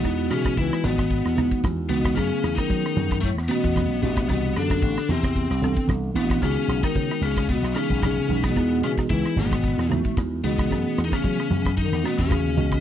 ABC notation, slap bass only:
X:1
M:4/4
L:1/16
Q:"Swing 16ths" 1/4=112
K:C#m
V:1 name="Slap bass" clef=bass
E,,2 B,,2 C,, z G,,,3 E,,2 z E,,2 C,,2 | F,, z E,, z F, z F,,3 E,, z E,,2 B,,, A,,,2 | =C,,2 F,,2 A,,, z E,,3 C,,2 z C,,2 A,,,2 | C,, z B,,, z C, z C,,3 B,,, z B,,,2 C, B,,,2 |
E,,2 B,,2 C,, z G,,,3 E,,2 z E,,2 C,,2 | F,, z E,, z F, z F,,3 E,, z E,,2 D,, C,,2 |]